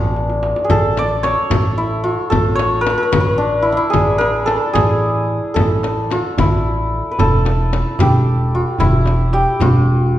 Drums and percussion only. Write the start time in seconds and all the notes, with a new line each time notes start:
0.16 tombak tek
0.30 tombak ka
0.43 tombak tek
0.56 tombak ka
0.70 tombak dum, frame drum
0.97 tombak tek, frame drum
1.24 tombak tek, frame drum
1.50 tombak dum, frame drum
1.77 tombak ka
2.32 tombak dum, frame drum
2.59 tombak tek, frame drum
2.87 tombak tek, frame drum
3.13 frame drum, tombak dum
3.40 tombak ka
3.93 frame drum, tombak dum
4.21 tombak tek, frame drum
4.48 tombak tek, frame drum
4.75 tombak dum, frame drum
5.03 tombak ka
5.56 frame drum, tombak dum
5.83 tombak tek, frame drum
6.11 tombak tek, frame drum
6.38 tombak dum, frame drum
6.65 tombak ka
7.19 tombak dum, frame drum
7.45 tombak tek, frame drum
7.73 tombak tek, frame drum
7.99 tombak dum, frame drum
8.26 tombak ka
8.79 tombak dum, frame drum
9.06 tombak tek, frame drum
9.33 tombak tek
9.60 tombak dum, frame drum
9.87 tombak ka